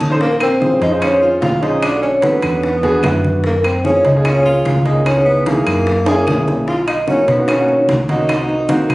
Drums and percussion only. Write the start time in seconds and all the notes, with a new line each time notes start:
0.00 cowbell, high conga
0.21 high bongo, high conga
0.40 high bongo, high conga, high timbale, claves
0.62 high bongo, high conga
0.82 high bongo, high conga, high timbale
1.02 high bongo, high conga, high timbale, claves
1.22 high bongo, high conga
1.42 high bongo, low bongo, high conga, high timbale, low timbale
1.63 high timbale
1.83 high bongo, high conga, high timbale, claves
2.03 high bongo, high conga
2.22 high bongo, high conga, high timbale
2.42 high bongo, high timbale, claves
2.63 high bongo, high conga
2.83 high bongo, high conga, high timbale
3.03 high bongo, low bongo, high conga, high timbale, low timbale, claves
3.24 high conga
3.44 high bongo, high conga
3.64 high bongo, high conga, high timbale, claves
3.85 high bongo, high conga
4.05 high bongo, high conga, high timbale
4.25 high bongo, high conga, high timbale, claves
4.45 high bongo, high conga
4.65 high bongo, low bongo, high conga, high timbale
4.86 high timbale
5.06 high bongo, high conga, high timbale, claves
5.26 high bongo, high conga
5.46 high bongo, high conga, high timbale
5.67 high bongo, high timbale, claves
5.87 high bongo, high conga
6.06 high conga, high timbale
6.27 high bongo, low bongo, high conga, high timbale, claves
6.48 high conga, low timbale
6.68 high bongo, high conga
6.88 high bongo, high conga, high timbale, claves
7.08 high bongo, high conga
7.28 high bongo, high conga, high timbale
7.48 high bongo, high conga, high timbale, claves
7.68 high bongo, high conga
7.89 high bongo, low bongo, high conga, high timbale
8.09 high conga, high timbale
8.29 high bongo, high conga, high timbale, claves
8.49 high bongo, high conga
8.69 high bongo, high conga, high timbale
8.90 high bongo, high timbale, claves